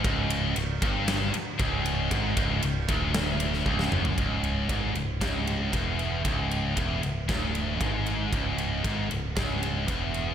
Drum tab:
RD |x-x-x-x-x-x-x-x-|x-x-x-x-x-x-----|x-x-x-x-x-x-x-x-|x-x-x-x-x-x-x-x-|
SD |--------o-------|--------o--o-o--|--------o-------|--------o-------|
T2 |----------------|--------------o-|----------------|----------------|
FT |----------------|---------------o|----------------|----------------|
BD |o-----o-----o---|o-o---o-----o---|o---o---o---o---|o---o---o---o---|

RD |x-x-x-x-x-x-x-x-|
SD |--------o-------|
T2 |----------------|
FT |----------------|
BD |o---o---o---o---|